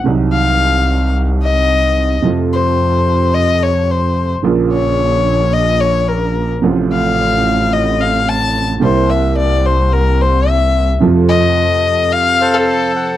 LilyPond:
<<
  \new Staff \with { instrumentName = "Bandoneon" } { \time 4/4 \key f \phrygian \tempo 4 = 109 << { r1 | r1 | r1 | r1 |
r1 | r2 r8 f''4 ges''8 | } \\ { r1 | r1 | r1 | r1 |
r1 | r2 r8 <a' c''>4. | } >> }
  \new Staff \with { instrumentName = "Violin" } { \time 4/4 \key f \phrygian r8 f''4. r8 ees''4. | r8 c''4. ees''8 des''8 c''8. r16 | r8 des''4. ees''8 des''8 bes'8. r16 | r8 f''4. ees''8 f''8 a''8. r16 |
c''8 e''8 d''8 c''8 bes'8 c''8 e''8. r16 | r8 ees''4. f''8. a'16 a'8. r16 | }
  \new Staff \with { instrumentName = "Upright piano" } { \clef bass \time 4/4 \key f \phrygian <c, c ees ges ees'>1 | <f, c f a f'>1 | <bes,, bes, des f bes f'>1 | <a,, a, c f a f'>1 |
<c, c g bes e'>1 | <f, c f a f'>1 | }
  \new Staff \with { instrumentName = "Double bass" } { \clef bass \time 4/4 \key f \phrygian c,1 | f,1 | bes,,1 | a,,1 |
c,1 | f,2 r2 | }
>>